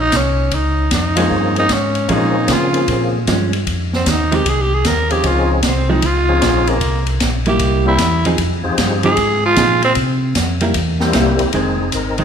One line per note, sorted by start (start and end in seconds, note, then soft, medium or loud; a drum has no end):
0.00 0.11 A#1 medium
0.00 0.18 D#4 loud
0.12 0.50 C2 loud
0.12 kick soft
0.12 snare medium
0.12 hi-hat pedal medium
0.12 ride medium
0.17 0.56 C#4 medium
0.51 0.90 C#2 medium
0.51 0.93 D#4 medium
0.51 kick soft
0.51 ride medium
0.91 1.29 F2 medium
0.91 1.54 D#4 medium
0.91 kick soft
0.91 snare medium
0.91 hi-hat pedal medium
0.91 ride medium
1.16 1.67 F3 medium
1.16 1.29 F3 medium
1.16 1.30 G#3 medium
1.16 1.67 A#3 medium
1.16 1.67 C4 medium
1.16 1.67 C#4 medium
1.16 1.30 C#4 medium
1.16 1.67 G#4 medium
1.16 ride medium
1.31 1.69 G2 medium
1.31 kick soft
1.56 1.75 D#4 medium
1.56 ride medium
1.69 2.08 G#2 loud
1.69 kick soft
1.69 snare medium
1.69 hi-hat pedal medium
1.69 ride medium
1.73 2.15 C#4 medium
1.95 ride soft
2.08 2.47 A#2 medium
2.08 3.19 F3 medium
2.08 2.33 F3 medium
2.08 2.33 G#3 medium
2.08 3.19 A#3 medium
2.08 3.19 C4 medium
2.08 3.19 C#4 medium
2.08 2.34 C#4 medium
2.08 3.19 G#4 medium
2.08 kick soft
2.08 ride medium
2.13 2.54 D#4 medium
2.48 2.87 C#3 loud
2.48 kick soft
2.48 snare medium
2.48 hi-hat pedal medium
2.48 ride medium
2.52 3.16 F4 medium
2.74 ride medium
2.88 3.26 A#2 medium
2.88 kick soft
2.88 ride medium
3.27 3.66 G2 loud
3.27 3.51 F3 medium
3.27 3.51 G#3 medium
3.27 3.52 C#4 medium
3.27 kick soft
3.27 snare medium
3.27 hi-hat pedal soft
3.27 ride medium
3.53 ride medium
3.67 4.05 F2 medium
3.67 kick soft
3.67 ride medium
3.93 4.11 C4 medium
3.93 snare medium
4.06 4.44 D#2 medium
4.06 4.36 D#4 medium
4.06 kick soft
4.06 snare medium
4.06 hi-hat pedal medium
4.06 ride medium
4.32 4.44 D#3 medium
4.32 4.44 G#3 medium
4.32 4.45 C4 medium
4.32 4.51 G4 medium
4.32 ride medium
4.46 4.84 C2 medium
4.46 4.63 G#4 medium
4.46 kick soft
4.46 ride medium
4.62 4.76 G4 medium
4.75 4.89 G#4 medium
4.85 5.23 D#2 loud
4.85 5.13 A#4 medium
4.85 kick soft
4.85 snare medium
4.85 hi-hat pedal medium
4.85 ride medium
5.10 5.61 F3 medium
5.10 5.61 C4 medium
5.10 5.61 C#4 medium
5.10 5.61 D#4 medium
5.10 5.28 G4 medium
5.10 5.61 G#4 medium
5.10 ride medium
5.24 5.62 C#2 medium
5.24 5.51 F4 medium
5.24 kick soft
5.24 ride medium
5.51 5.67 G#3 medium
5.63 6.02 C2 medium
5.63 5.92 C4 medium
5.63 kick soft
5.63 snare medium
5.63 hi-hat pedal medium
5.63 ride medium
5.89 6.02 F3 medium
5.89 6.02 G#3 medium
5.89 6.02 C4 medium
5.89 6.07 D#4 medium
6.02 6.41 C#2 medium
6.02 6.70 F4 loud
6.02 kick soft
6.02 ride medium
6.28 6.79 F3 medium
6.28 6.79 C4 medium
6.28 6.79 C#4 medium
6.28 6.79 D#4 medium
6.28 6.79 G#4 medium
6.42 6.80 A#1 loud
6.42 kick soft
6.42 snare medium
6.42 hi-hat pedal medium
6.42 ride medium
6.67 7.08 A#3 medium
6.67 ride medium
6.81 7.19 C2 medium
6.81 kick soft
6.81 ride medium
7.07 ride soft
7.20 7.59 A#1 medium
7.20 kick soft
7.20 snare medium
7.20 hi-hat pedal medium
7.20 ride medium
7.46 7.97 G3 medium
7.46 7.97 A#3 medium
7.46 7.97 E4 medium
7.46 7.84 G4 medium
7.46 ride medium
7.59 7.98 C2 medium
7.59 kick soft
7.59 ride medium
7.86 7.98 G3 medium
7.86 7.98 A#3 medium
7.86 7.99 C4 medium
7.86 7.99 E4 medium
7.86 8.23 E4 loud
7.86 7.99 G4 medium
7.98 8.37 E2 loud
7.98 kick soft
7.98 snare medium
7.98 hi-hat pedal medium
7.98 ride medium
8.25 8.38 F3 medium
8.25 8.38 C4 medium
8.25 8.34 C4 medium
8.25 8.38 D#4 medium
8.25 8.38 G#4 medium
8.25 ride medium
8.38 8.63 F2 medium
8.38 kick soft
8.38 ride medium
8.64 8.71 F2 soft
8.64 9.14 F3 medium
8.64 9.15 C4 medium
8.64 9.15 D#4 medium
8.64 9.15 G4 medium
8.64 9.14 G#4 medium
8.78 9.16 G2 loud
8.78 kick soft
8.78 snare medium
8.78 hi-hat pedal medium
8.78 ride medium
9.03 9.16 F3 medium
9.03 9.17 C4 medium
9.03 9.17 D#4 medium
9.03 9.41 G#4 loud
9.03 9.17 G#4 medium
9.03 ride medium
9.17 9.56 G#2 medium
9.17 kick soft
9.17 ride medium
9.46 9.81 F4 loud
9.56 9.95 A#2 loud
9.56 9.80 F3 medium
9.56 9.80 C4 medium
9.56 9.80 D#4 medium
9.56 9.81 G#4 medium
9.56 kick soft
9.56 snare medium
9.56 hi-hat pedal medium
9.56 ride medium
9.82 9.92 C4 loud
9.82 ride medium
9.95 10.34 C3 medium
9.95 kick soft
9.95 ride medium
10.35 10.74 F2 loud
10.35 kick soft
10.35 snare medium
10.35 hi-hat pedal medium
10.35 ride medium
10.61 10.74 G3 medium
10.61 10.74 A#3 medium
10.61 10.74 E4 medium
10.61 ride medium
10.74 11.13 E2 medium
10.74 kick soft
10.74 ride medium
11.00 11.51 G3 medium
11.00 11.51 A#3 medium
11.00 11.51 C4 medium
11.00 11.51 E4 medium
11.00 11.52 G4 medium
11.00 snare medium
11.13 11.38 C2 loud
11.13 11.37 G3 medium
11.13 11.38 A#3 medium
11.13 11.38 E4 medium
11.13 kick soft
11.13 snare medium
11.13 hi-hat pedal medium
11.13 ride medium
11.39 11.47 C2 soft
11.39 ride medium
11.53 11.92 F1 medium
11.53 11.77 D#3 medium
11.53 11.77 G#3 medium
11.53 11.78 C4 medium
11.53 12.19 C4 medium
11.53 12.19 D#4 medium
11.53 11.91 G#4 medium
11.53 kick soft
11.53 ride medium
11.92 12.24 G#1 medium
11.92 12.18 A#4 medium
11.92 kick soft
11.92 hi-hat pedal medium
11.92 ride medium
12.18 12.24 D#3 medium
12.18 12.24 G#3 medium
12.18 12.24 C4 medium
12.18 12.24 D#4 medium
12.18 12.24 G#4 medium
12.18 ride soft